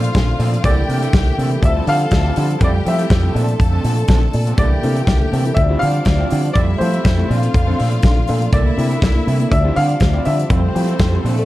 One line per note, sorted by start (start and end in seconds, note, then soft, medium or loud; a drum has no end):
0.00 0.63 C3 medium
0.00 0.10 F3 medium
0.00 0.62 A3 medium
0.00 0.63 D4 medium
0.00 0.61 F4 medium
0.00 0.37 C5 loud
0.00 0.61 F5 loud
0.00 muted clean electric guitar stroke soft
0.00 closed hi-hat soft
0.15 0.32 A#1 loud
0.15 muted clean electric guitar stroke soft
0.15 kick loud
0.15 snare medium
0.15 closed hi-hat medium
0.28 muted clean electric guitar stroke medium
0.39 0.57 A#2 loud
0.39 0.59 F3 medium
0.39 0.52 C4 medium
0.39 0.52 D4 medium
0.39 0.51 A4 loud
0.39 open hi-hat medium
0.53 muted clean electric guitar stroke soft
0.53 closed hi-hat soft
0.64 0.82 C2 loud
0.64 1.62 D3 medium
0.64 0.84 E3 medium
0.64 1.63 A3 medium
0.64 0.77 A#3 medium
0.64 1.62 A#3 medium
0.64 0.76 D4 medium
0.64 1.62 E4 medium
0.64 1.61 G4 medium
0.64 0.76 A4 loud
0.64 1.66 D5 medium
0.64 1.61 G5 loud
0.64 kick loud
0.64 closed hi-hat medium
0.77 muted clean electric guitar stroke soft
0.89 1.06 C3 medium
0.89 1.02 E3 medium
0.89 1.01 A#3 medium
0.89 1.01 D4 medium
0.89 1.02 A#4 medium
0.89 open hi-hat medium
1.02 1.13 E3 medium
1.02 1.13 A#3 medium
1.02 1.13 D4 medium
1.02 1.13 A4 medium
1.02 closed hi-hat soft
1.13 1.31 C2 medium
1.13 muted clean electric guitar stroke soft
1.13 kick loud
1.13 snare loud
1.13 closed hi-hat medium
1.27 muted clean electric guitar stroke soft
1.38 1.55 C3 medium
1.38 1.58 E3 medium
1.38 1.51 A#3 medium
1.38 1.50 D4 medium
1.38 1.50 A4 medium
1.38 open hi-hat medium
1.51 muted clean electric guitar stroke soft
1.51 closed hi-hat soft
1.63 1.80 D2 loud
1.63 3.33 F3 medium
1.63 2.61 G3 medium
1.63 2.60 C4 medium
1.63 2.60 F4 medium
1.63 2.60 A4 medium
1.63 1.70 E5 loud
1.63 2.60 A5 loud
1.63 muted clean electric guitar stroke soft
1.63 kick loud
1.63 closed hi-hat medium
1.76 1.85 F3 medium
1.76 1.86 C4 medium
1.76 1.86 E4 medium
1.76 1.87 A4 medium
1.87 2.05 D3 loud
1.87 2.04 F3 medium
1.87 2.00 C4 medium
1.87 1.99 E4 medium
1.87 1.99 G4 medium
1.87 2.64 F5 loud
1.87 open hi-hat medium
2.00 muted clean electric guitar stroke soft
2.00 closed hi-hat soft
2.11 2.29 D2 medium
2.11 muted clean electric guitar stroke soft
2.11 kick medium
2.11 snare loud
2.11 closed hi-hat medium
2.25 2.35 F3 medium
2.25 2.35 C4 medium
2.25 2.36 E4 medium
2.25 2.36 G4 medium
2.36 2.54 D3 loud
2.36 2.56 F3 medium
2.36 2.48 C4 medium
2.36 2.48 E4 medium
2.36 2.47 G4 loud
2.36 open hi-hat medium
2.49 muted clean electric guitar stroke soft
2.49 closed hi-hat soft
2.60 2.79 F2 loud
2.60 2.81 G3 medium
2.60 5.54 A3 medium
2.60 2.73 C4 medium
2.60 2.73 E4 medium
2.60 3.34 G4 medium
2.60 2.72 A4 medium
2.60 3.34 G5 medium
2.60 kick loud
2.60 closed hi-hat medium
2.64 2.69 D5 medium
2.73 muted clean electric guitar stroke soft
2.84 3.04 F3 medium
2.84 2.98 G3 medium
2.84 2.98 C4 medium
2.84 2.97 E4 medium
2.84 2.97 A4 medium
2.84 4.31 E5 loud
2.84 open hi-hat medium
2.98 3.09 G3 soft
2.98 3.09 C4 medium
2.98 3.09 E4 medium
2.98 3.09 A4 medium
2.98 closed hi-hat soft
3.10 3.28 F2 medium
3.10 muted clean electric guitar stroke soft
3.10 kick loud
3.10 snare loud
3.10 closed hi-hat medium
3.23 3.34 G3 soft
3.23 3.34 C4 medium
3.23 3.35 E4 medium
3.23 3.34 A4 medium
3.34 3.53 A#2 loud
3.34 4.57 C3 medium
3.34 3.55 F3 medium
3.34 3.47 C4 medium
3.34 4.57 D4 medium
3.34 3.47 D4 medium
3.34 4.56 A4 medium
3.34 3.46 A4 medium
3.34 4.56 A5 medium
3.34 open hi-hat medium
3.47 muted clean electric guitar stroke soft
3.47 closed hi-hat soft
3.59 3.77 F2 medium
3.59 muted clean electric guitar stroke soft
3.59 kick loud
3.59 closed hi-hat medium
3.72 3.82 F3 soft
3.72 3.83 C4 medium
3.72 3.83 D4 medium
3.72 3.83 A4 medium
3.83 4.02 A#2 medium
3.83 4.04 F3 medium
3.83 3.97 C4 medium
3.83 3.96 D4 medium
3.83 3.95 A4 medium
3.83 open hi-hat medium
3.97 muted clean electric guitar stroke soft
3.97 closed hi-hat soft
4.08 4.26 A#1 medium
4.08 4.29 F3 medium
4.08 4.21 C4 medium
4.08 4.21 D4 medium
4.08 4.21 A4 medium
4.08 kick loud
4.08 snare medium
4.08 closed hi-hat medium
4.22 muted clean electric guitar stroke soft
4.33 4.51 A#2 loud
4.33 muted clean electric guitar stroke soft
4.33 open hi-hat medium
4.45 4.57 F3 soft
4.45 4.57 C4 medium
4.45 4.57 D4 medium
4.45 4.57 A4 medium
4.45 closed hi-hat soft
4.58 4.76 C2 loud
4.58 4.72 C3 medium
4.58 5.56 D3 medium
4.58 4.78 E3 medium
4.58 4.72 G3 medium
4.58 4.70 A#3 medium
4.58 5.56 A#3 medium
4.58 4.70 D4 medium
4.58 5.56 E4 medium
4.58 5.55 G4 medium
4.58 4.70 A4 medium
4.58 5.60 D5 medium
4.58 5.55 G5 medium
4.58 kick loud
4.58 closed hi-hat medium
4.71 muted clean electric guitar stroke soft
4.82 5.01 C3 medium
4.82 4.95 E3 medium
4.82 4.94 A#3 medium
4.82 4.97 A#3 medium
4.82 4.94 D4 medium
4.82 4.97 D4 medium
4.82 4.96 E4 medium
4.82 4.96 A4 loud
4.82 4.94 A#4 medium
4.82 open hi-hat medium
4.95 5.06 E3 medium
4.95 5.06 A#3 medium
4.95 5.06 D4 medium
4.95 5.01 E4 soft
4.95 5.07 A4 medium
4.95 5.01 A4 soft
4.95 closed hi-hat soft
5.07 5.25 C2 medium
5.07 muted clean electric guitar stroke soft
5.07 kick loud
5.07 snare loud
5.07 closed hi-hat medium
5.20 5.33 A#3 medium
5.20 5.33 D4 medium
5.20 5.33 E4 medium
5.20 5.33 A4 medium
5.20 muted clean electric guitar stroke soft
5.32 5.46 C3 soft
5.32 5.50 C3 medium
5.32 5.52 E3 medium
5.32 5.46 G3 medium
5.32 5.44 A#3 medium
5.32 5.44 D4 medium
5.32 5.43 A4 loud
5.32 open hi-hat medium
5.44 5.58 A#3 medium
5.44 5.57 D4 medium
5.44 5.58 E4 medium
5.44 5.58 A4 medium
5.44 muted clean electric guitar stroke soft
5.44 closed hi-hat soft
5.54 5.74 D2 loud
5.54 5.71 D3 soft
5.54 7.28 F3 medium
5.54 6.55 G3 medium
5.54 5.71 A3 soft
5.54 6.55 C4 medium
5.54 6.54 D4 medium
5.54 6.55 F4 medium
5.54 6.54 D5 medium
5.54 5.81 E5 loud
5.54 muted clean electric guitar stroke soft
5.54 kick loud
5.54 closed hi-hat medium
5.69 5.79 F3 medium
5.69 5.80 C4 medium
5.69 5.82 C4 medium
5.69 5.80 E4 medium
5.69 5.82 E4 medium
5.69 5.81 F4 medium
5.69 5.81 G4 medium
5.69 5.81 A4 medium
5.79 6.00 D3 loud
5.79 5.98 F3 medium
5.79 5.93 C4 medium
5.79 5.93 E4 medium
5.79 5.87 F4 soft
5.79 5.93 G4 medium
5.79 5.87 G4 soft
5.79 6.57 F5 loud
5.79 open hi-hat medium
5.94 muted clean electric guitar stroke soft
5.94 closed hi-hat soft
6.05 6.24 D2 medium
6.05 6.20 D3 medium
6.05 6.20 A3 medium
6.05 muted clean electric guitar stroke soft
6.05 kick medium
6.05 snare loud
6.05 closed hi-hat medium
6.18 6.29 F3 medium
6.18 6.30 C4 medium
6.18 6.32 C4 medium
6.18 6.30 E4 medium
6.18 6.32 E4 medium
6.18 6.30 F4 medium
6.18 6.30 G4 medium
6.31 6.49 D3 medium
6.31 6.51 F3 medium
6.31 6.43 C4 medium
6.31 6.43 E4 medium
6.31 6.36 F4 soft
6.31 6.36 G4 soft
6.31 6.43 G4 medium
6.31 open hi-hat medium
6.44 muted clean electric guitar stroke soft
6.44 closed hi-hat soft
6.53 6.73 F2 loud
6.53 6.69 F3 medium
6.53 6.75 G3 medium
6.53 9.50 A3 medium
6.53 6.68 C4 medium
6.53 6.67 E4 medium
6.53 7.28 E4 medium
6.53 7.29 G4 medium
6.53 6.67 A4 medium
6.53 6.59 D5 loud
6.53 7.28 E5 medium
6.53 kick loud
6.53 closed hi-hat medium
6.68 muted clean electric guitar stroke soft
6.78 6.98 F3 medium
6.78 6.92 G3 medium
6.78 6.94 A3 medium
6.78 6.91 C4 medium
6.78 6.91 E4 medium
6.78 6.93 E4 medium
6.78 6.93 G4 loud
6.78 6.90 A4 medium
6.78 8.23 C5 medium
6.78 open hi-hat medium
6.92 7.03 G3 soft
6.92 7.03 C4 soft
6.92 7.03 E4 medium
6.92 6.98 E4 soft
6.92 6.98 G4 soft
6.92 7.04 A4 medium
6.92 closed hi-hat soft
7.05 7.23 F2 medium
7.05 kick loud
7.05 snare loud
7.05 closed hi-hat medium
7.17 7.28 G3 medium
7.17 7.30 A3 medium
7.17 7.27 C4 medium
7.17 7.29 E4 medium
7.17 7.30 E4 medium
7.17 7.31 G4 medium
7.17 7.28 A4 medium
7.28 7.43 A#2 soft
7.28 7.47 A#2 loud
7.28 8.52 C3 medium
7.28 7.49 F3 medium
7.28 7.44 F3 medium
7.28 7.42 C4 medium
7.28 7.41 D4 medium
7.28 8.52 D4 medium
7.28 8.51 F4 medium
7.28 7.41 A4 medium
7.28 8.51 F5 medium
7.28 open hi-hat medium
7.42 7.55 C4 medium
7.42 7.55 D4 medium
7.42 7.56 A4 medium
7.42 muted clean electric guitar stroke soft
7.42 closed hi-hat soft
7.54 7.72 F2 loud
7.54 7.68 A#2 medium
7.54 7.68 F3 medium
7.54 muted clean electric guitar stroke soft
7.54 kick loud
7.54 closed hi-hat medium
7.67 7.77 F3 soft
7.67 7.77 C4 medium
7.67 7.80 C4 medium
7.67 7.77 D4 medium
7.67 7.78 D4 medium
7.67 7.78 A4 medium
7.78 7.97 A#2 medium
7.78 7.99 F3 medium
7.78 7.90 C4 medium
7.78 7.90 D4 medium
7.78 7.84 D4 soft
7.78 7.90 A4 loud
7.78 7.84 A4 soft
7.78 open hi-hat medium
7.91 muted clean electric guitar stroke soft
7.91 closed hi-hat soft
8.03 8.21 A#1 loud
8.03 8.17 D4 medium
8.03 8.17 A4 medium
8.03 muted clean electric guitar stroke soft
8.03 kick loud
8.03 snare medium
8.03 closed hi-hat medium
8.16 8.29 A#2 medium
8.16 8.29 F3 soft
8.16 muted clean electric guitar stroke soft
8.28 8.46 A#2 loud
8.28 8.48 F3 medium
8.28 8.41 C4 medium
8.28 8.42 D4 medium
8.28 8.41 D4 medium
8.28 8.42 A4 medium
8.28 8.40 A4 medium
8.28 open hi-hat medium
8.42 muted clean electric guitar stroke soft
8.42 closed hi-hat soft
8.52 8.70 C2 loud
8.52 8.66 C3 medium
8.52 9.50 D3 medium
8.52 8.66 G3 medium
8.52 9.50 A#3 medium
8.52 8.73 A#3 medium
8.52 8.65 D4 medium
8.52 9.50 E4 medium
8.52 8.64 E4 loud
8.52 9.50 E4 medium
8.52 8.64 A4 medium
8.52 9.55 D5 medium
8.52 9.50 E5 medium
8.52 kick loud
8.52 closed hi-hat medium
8.65 muted clean electric guitar stroke soft
8.77 8.95 C3 medium
8.77 8.90 A#3 medium
8.77 8.91 A#3 medium
8.77 8.91 D4 medium
8.77 8.90 D4 medium
8.77 8.89 E4 medium
8.77 8.89 A4 medium
8.77 8.89 A#4 medium
8.77 open hi-hat medium
8.90 9.01 A#3 medium
8.90 9.01 D4 medium
8.90 8.95 E4 soft
8.90 9.02 E4 medium
8.90 9.01 A4 medium
8.90 8.95 A4 soft
8.90 closed hi-hat soft
9.02 9.20 C2 medium
9.02 kick loud
9.02 snare loud
9.02 closed hi-hat medium
9.15 9.27 A#3 medium
9.15 9.27 D4 medium
9.15 9.28 E4 medium
9.15 9.28 A4 medium
9.15 muted clean electric guitar stroke soft
9.26 9.40 C3 medium
9.26 9.45 C3 medium
9.26 9.41 G3 medium
9.26 9.47 A#3 medium
9.26 9.39 D4 medium
9.26 9.39 E4 medium
9.26 9.38 A4 medium
9.26 open hi-hat medium
9.39 9.52 A#3 medium
9.39 9.52 D4 medium
9.39 9.52 E4 medium
9.39 9.52 A4 medium
9.39 muted clean electric guitar stroke soft
9.39 closed hi-hat soft
9.51 9.69 D2 loud
9.51 9.66 D3 medium
9.51 11.23 F3 medium
9.51 10.49 G3 medium
9.51 9.66 A3 medium
9.51 10.49 C4 medium
9.51 10.48 D4 medium
9.51 10.50 F4 medium
9.51 10.48 D5 medium
9.51 9.77 E5 loud
9.51 muted clean electric guitar stroke soft
9.51 kick loud
9.51 closed hi-hat medium
9.64 9.75 F3 medium
9.64 9.77 C4 medium
9.64 9.75 C4 medium
9.64 9.75 E4 medium
9.64 9.77 E4 medium
9.64 9.75 F4 medium
9.64 9.76 G4 medium
9.64 9.77 A4 medium
9.76 9.94 D3 loud
9.76 9.93 F3 medium
9.76 9.89 C4 medium
9.76 9.89 E4 medium
9.76 9.82 F4 soft
9.76 9.82 G4 soft
9.76 9.88 G4 medium
9.76 10.22 F5 loud
9.76 open hi-hat medium
9.89 muted clean electric guitar stroke soft
9.89 closed hi-hat soft
10.00 10.18 D2 medium
10.00 10.14 D3 medium
10.00 10.14 A3 medium
10.00 muted clean electric guitar stroke soft
10.00 kick loud
10.00 snare loud
10.00 closed hi-hat medium
10.13 10.24 F3 soft
10.13 10.26 C4 medium
10.13 10.24 C4 medium
10.13 10.26 E4 medium
10.13 10.25 E4 medium
10.13 10.24 F4 medium
10.13 10.25 G4 medium
10.13 10.24 G4 medium
10.25 10.44 D3 medium
10.25 10.45 F3 medium
10.25 10.37 C4 medium
10.25 10.37 E4 medium
10.25 10.31 F4 soft
10.25 10.31 G4 soft
10.25 10.36 G4 medium
10.25 11.45 E5 medium
10.25 open hi-hat medium
10.37 muted clean electric guitar stroke soft
10.37 closed hi-hat soft
10.49 10.68 F2 loud
10.49 10.64 F3 medium
10.49 10.70 G3 medium
10.49 11.45 A3 medium
10.49 10.62 C4 medium
10.49 11.23 C4 medium
10.49 10.62 E4 medium
10.49 11.23 G4 medium
10.49 10.61 A4 medium
10.49 11.23 C5 medium
10.49 kick loud
10.49 closed hi-hat medium
10.63 muted clean electric guitar stroke soft
10.75 10.93 F3 medium
10.75 10.87 G3 medium
10.75 10.89 A3 medium
10.75 10.87 C4 medium
10.75 10.88 E4 medium
10.75 10.86 E4 medium
10.75 10.88 G4 medium
10.75 10.86 A4 medium
10.75 open hi-hat medium
10.87 10.98 G3 medium
10.87 10.98 C4 medium
10.87 10.99 E4 medium
10.87 10.93 E4 soft
10.87 10.93 G4 soft
10.87 10.99 A4 medium
10.87 closed hi-hat soft
10.99 11.17 F2 medium
10.99 muted clean electric guitar stroke soft
10.99 kick loud
10.99 snare loud
10.99 closed hi-hat medium
11.12 11.23 G3 soft
11.12 11.25 A3 medium
11.12 11.22 C4 medium
11.12 11.23 E4 medium
11.12 11.25 E4 medium
11.12 11.25 G4 medium
11.12 11.23 A4 medium
11.23 11.42 A#2 medium
11.23 11.39 A#2 medium
11.23 11.45 C3 medium
11.23 11.44 F3 medium
11.23 11.39 F3 medium
11.23 11.45 A3 medium
11.23 11.37 C4 medium
11.23 11.36 D4 medium
11.23 11.45 D4 medium
11.23 11.36 A4 medium
11.23 11.45 A4 medium
11.23 open hi-hat medium
11.37 11.45 C4 medium
11.37 11.45 D4 medium
11.37 11.45 A4 medium
11.37 muted clean electric guitar stroke medium
11.37 closed hi-hat soft